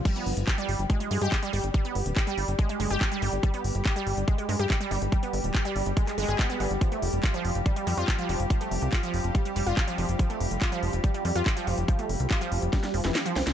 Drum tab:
CC |x---------------|----------------|----------------|----------------|
HH |xxoxxxoxxxoxxxox|xxoxxxoxxxoxxxox|xxoxxxoxxxoxxxox|xxoxxxoxxxoxxxox|
CP |----x-------x---|----x-------x---|----x-------x---|----x----x--x---|
SD |----------------|----------------|----------------|----------------|
BD |o---o---o---o---|o---o---o---o---|o---o---o---o---|o---o---o---o---|

CC |----------------|----------------|----------------|----------------|
HH |xxoxxxoxxxoxxxox|xxoxxxoxxxoxxxox|xxoxxxoxxxoxxxox|xxoxxxoxxxoxxxox|
CP |----x-------x---|----x-------x---|----x-------x---|----x-------x---|
SD |----------------|----------------|----------------|--------oo-oo-oo|
BD |o---o---o---o---|o---o---o---o---|o---o---o---o---|o---o---o-------|